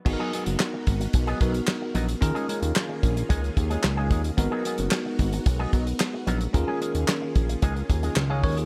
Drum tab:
CC |x---------------|----------------|----------------|----------------|
HH |--xx--xxxxxx--xx|xxxx--xxxxxx--xx|x-xx--xxx-xx--xx|x-xx--xxxxxx--ox|
CP |----x-------x---|----x-------x---|----x-------x---|----x-------x---|
SD |----o-------o---|----o-------o---|----o-------o---|----o-------o---|
BD |o-----o-o-o-----|o-----o-o-o---o-|o-----o-o-o-----|o-----o-o-o---o-|